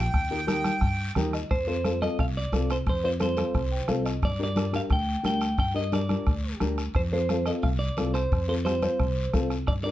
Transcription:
Already playing: G5
0.14 D#2, bombo low, bombo rim, long guiro
0.30 D#4 G4 A#4
0.47 D#4 G4 A#4, bombo rim, high conga, short guiro
0.64 bombo rim, high conga, short guiro
0.81 G2, bombo low, bombo rim, long guiro
1.15 D#2 D#4 G4 A#4 G5, bombo rim, high conga, low conga, short guiro
1.33 D#5, bombo rim, short guiro
1.51 F2 C5, bombo low, bombo rim, long guiro
1.67 C4 F4 A4 C5
1.84 C4 F4 A4, bombo rim, high conga, short guiro
2.02 C4 F4 A4 D#5, bombo rim, high conga, short guiro
2.19 C2 F5, bombo low, bombo rim, long guiro
2.37 D5
2.52 C2 C4 F4 A4, bombo rim, high conga, short guiro
2.70 C5, bombo rim, short guiro
2.86 F2 C5, bombo low, bombo rim, long guiro
3.03 C4 F4 C5
3.19 C4 F4 A4 C5, bombo rim, high conga, short guiro
3.36 C4 F4 A4, bombo rim, high conga, short guiro
3.54 C2, bombo low, bombo rim, long guiro
3.71 G5
3.88 C2 C4 F4 A4 F5, bombo rim, high conga, short guiro
4.05 D#5, bombo rim, short guiro
4.22 G2 D5, bombo low, bombo rim, long guiro
4.39 D4 G4 A#4
4.43 D5
4.55 D4 G4 A#4, bombo rim, high conga, short guiro
4.72 D4 G4 A#4 F5, bombo rim, high conga, short guiro
4.90 D2 G5, bombo low, bombo rim, long guiro
5.23 D2 D4 G4 A#4 G5, bombo rim, high conga, short guiro
5.41 bombo rim, short guiro
5.58 G2 G5, bombo low, bombo rim, long guiro
5.74 D4 G4 A#4 D#5
5.92 D4 G4 A#4 D5, bombo rim, high conga, short guiro
6.09 D4 G4 A#4, bombo rim, high conga, short guiro
6.26 D2, bombo low, bombo rim, long guiro
6.60 D2 D4 G4 A#4, bombo rim, high conga, short guiro
6.78 bombo rim, short guiro
6.94 F2 C5, bombo low, bombo rim, long guiro
7.11 C4 F4 A4 C5
7.29 C4 F4 A4, bombo rim, high conga, short guiro
7.46 C4 F4 A4 D#5, bombo rim, short guiro
7.63 C2 F5, bombo low, bombo rim, long guiro
7.79 D5
7.97 C2 C4 F4 A4, bombo rim, high conga, short guiro
8.14 C5, bombo rim, short guiro
8.32 F2, bombo low, bombo rim, long guiro
8.48 C4 F4 A4 C5
8.65 C4 F4 G4 C5, bombo rim, high conga, short guiro
8.82 C4 F4 C5, bombo rim, high conga, short guiro
8.99 C2, bombo low, bombo rim, long guiro
9.33 C2 C4 F4 A4, bombo low, bombo rim, high conga, short guiro
9.50 bombo rim, short guiro
9.67 G2 D5, bombo low, bombo rim, long guiro
9.84 D4 G4 A#4 D5

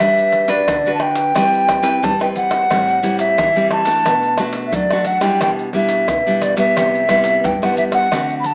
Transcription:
Already playing: D4 F#4 B4 E5
0.00 G3, pandeiro, tamborim, maracas, surdo
0.18 pandeiro, maracas
0.32 pandeiro, maracas
0.48 D4 F#4 B4 D5, pandeiro, maracas
0.68 D3, pandeiro, tamborim, maracas, surdo
0.86 D4 F#4 B4, pandeiro, maracas
0.95 A5
1.00 G5, pandeiro, tamborim
1.16 pandeiro, maracas
1.35 G3 C4 E4 B4, pandeiro, tamborim, maracas, surdo
1.54 pandeiro, maracas
1.69 pandeiro, tamborim, maracas, surdo
1.82 C4 E4 B4, pandeiro, maracas
2.03 G3 A5, pandeiro, maracas, surdo
2.20 C4 E4 B4 G5, pandeiro, tamborim, maracas
2.36 F#5, pandeiro, maracas
2.51 pandeiro, tamborim, maracas
2.70 A2 G3 C4 E4, pandeiro, tamborim, maracas, surdo
2.89 pandeiro, maracas
3.03 G3 C4 E4, pandeiro, maracas
3.19 E5, pandeiro, maracas
3.38 E3, pandeiro, tamborim, maracas, surdo
3.56 G3 C4 E4, pandeiro, maracas
3.71 A5, pandeiro, tamborim
3.85 A3 D4 F#4, pandeiro, maracas
4.06 B2, pandeiro, tamborim, maracas, surdo
4.23 pandeiro, maracas
4.38 A3 D4 F#4, pandeiro, tamborim, maracas
4.53 pandeiro, maracas
4.67 E5
4.73 F#3 D5, pandeiro, maracas, surdo
4.91 A3 D4 F#4, pandeiro, tamborim, maracas
5.04 F#5, pandeiro, maracas
5.21 G3 D4 E4 G5, pandeiro, tamborim, maracas
5.41 B2 G5, pandeiro, tamborim, maracas, surdo
5.59 pandeiro, maracas
5.73 G3 D4 E4 E5, pandeiro
5.89 pandeiro, maracas
6.08 B2, pandeiro, tamborim, maracas, surdo
6.27 G3 D4 E4, pandeiro, maracas
6.42 D5, pandeiro, tamborim, maracas
6.57 G3 B3 E4 E5, pandeiro, maracas
6.76 C3, pandeiro, tamborim, maracas, surdo
6.94 pandeiro, maracas
7.08 G3 B3 E4, pandeiro, tamborim, maracas, surdo
7.24 pandeiro, maracas
7.44 G2 G5, pandeiro, maracas, surdo
7.62 G3 B3 E4 F#5, pandeiro, tamborim, maracas
7.77 E5, pandeiro, maracas
7.92 F#5, pandeiro, tamborim, maracas
8.11 D3 A3 C4 F#4, pandeiro, tamborim, maracas, surdo
8.30 pandeiro, maracas
8.40 B5
8.44 A5, pandeiro, maracas

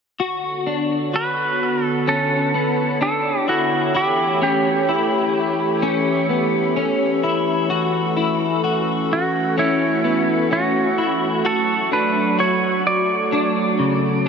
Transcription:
0.20 D3 B3 F#4 A4 C#5
0.67 D4
1.13 F#4 B4
1.84 A4
2.07 C#4 E4 A4
2.54 B3
3.01 D4 A4
3.48 E4 F#4
3.94 E3 A3 E4 G4
4.42 C#4 G4
4.89 E4
5.82 C#4
6.29 B3
6.76 C#4
7.23 E4
7.70 A3 C#4 F#4
8.17 E4
8.64 F#4
9.13 F#4
9.58 C#4 E4
10.04 B3
10.51 C#4 F#4
10.98 E4
11.45 F#3 F#4 A4
11.92 D4 B4
12.39 F#4 C#5
12.87 D5
13.32 D4
13.79 C#3

